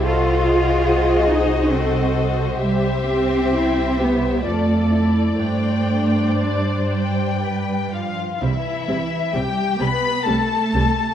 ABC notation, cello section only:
X:1
M:3/4
L:1/8
Q:1/4=65
K:C
V:1 name="Cello section"
F3 _E C z | G, C2 B, A,2 | A,2 G,3 F, | E,2 G, B, A,2 |]